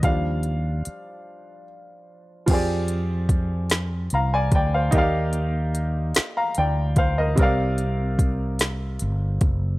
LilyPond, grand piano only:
\new Staff \with { instrumentName = "Grand piano" } { \time 6/8 \key f \dorian \tempo 4. = 49 << { f''2 r4 | r2 <f'' bes''>16 <d'' aes''>16 <d'' g''>16 <c'' f''>16~ | <c'' f''>16 r4. <f'' bes''>16 <d'' g''>8 <c'' f''>16 <bes' ees''>16~ | <bes' ees''>16 r2 r8. | } \\ { <f g d'>2. | <f c' g' aes' d''>2. | <bes ees' g' d'' f''>2. | <c c' bes' d'' f''>2. | } >> }